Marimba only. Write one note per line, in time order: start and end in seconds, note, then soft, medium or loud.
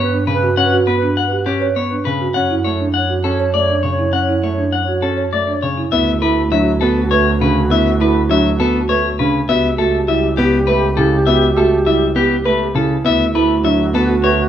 0.13 0.32 D4 medium
0.43 0.62 F#4 medium
0.73 0.92 F#4 loud
1.02 1.21 D4 medium
1.32 1.51 G4 medium
1.62 1.81 C#5 medium
1.91 2.10 D4 medium
2.21 2.40 F#4 medium
2.51 2.70 E4 medium
2.80 3.00 D4 medium
3.10 3.29 F#4 medium
3.40 3.59 C#5 medium
3.70 3.89 D4 medium
3.99 4.18 E4 medium
4.29 4.48 E4 medium
4.58 4.78 D4 medium
4.88 5.07 F#4 medium
5.18 5.37 C#5 medium
5.47 5.67 D4 medium
5.77 5.91 E4 medium
5.93 6.12 E4 medium
6.22 6.41 E4 loud
6.52 6.71 D4 medium
6.81 7.01 F#4 medium
7.11 7.30 B4 loud
7.41 7.60 D4 medium
7.71 7.90 E4 medium
8.01 8.19 E4 loud
8.30 8.49 D4 medium
8.60 8.79 F#4 medium
8.90 9.09 B4 loud
9.19 9.38 D4 medium
9.49 9.68 F#4 medium
9.79 9.98 F#4 loud
10.09 10.28 E4 medium
10.39 10.57 G4 medium
10.68 10.87 B4 loud
10.97 11.16 E4 medium
11.27 11.46 F#4 medium
11.57 11.76 F#4 loud
11.87 12.06 E4 medium
12.16 12.35 G4 medium
12.45 12.65 B4 loud
12.76 12.95 E4 medium
13.05 13.24 E4 medium
13.35 13.54 E4 loud
13.65 13.84 D4 medium
13.95 14.14 F#4 medium
14.24 14.43 B4 loud